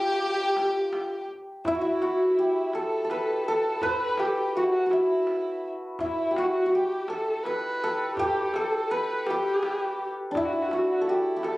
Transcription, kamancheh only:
Already playing: G4
1.65 E4
1.80 E4
2.75 A4
3.47 A4
3.82 B4
3.88 C5
3.96 B4
4.19 G4
4.27 A4
4.35 G4
4.56 F#4
4.64 E4
4.71 F#4
4.92 E4
6.02 E4
6.37 F#4
6.46 E4
6.52 F#4
6.72 G4
7.08 A4
7.43 B4
8.15 G4
8.53 A4
8.90 B4
9.27 G4
10.37 E4
10.45 F#4
10.52 E4
10.62 F#4
10.68 E4
10.75 F#4
10.84 E4
10.92 F#4
11.01 E4
11.08 F#4
11.16 E4
11.44 A4

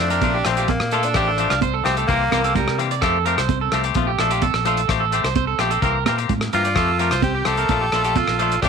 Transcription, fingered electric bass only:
0.00 F2
0.22 A#1
0.46 A#1
0.80 A#2
1.15 A1
1.51 C2
1.85 C2
2.09 C2
2.32 C2
2.68 C3
3.03 F2
3.38 C2
3.72 C2
3.95 A#1
4.19 A#1
4.54 A#1
4.89 A1
5.24 C2
5.59 A#1
5.82 C2
6.06 A#2
6.30 A2
6.53 G2
6.76 F2
7.12 C2
7.46 C2
7.69 A#1
7.93 A#1
8.28 A#1
8.62 A1

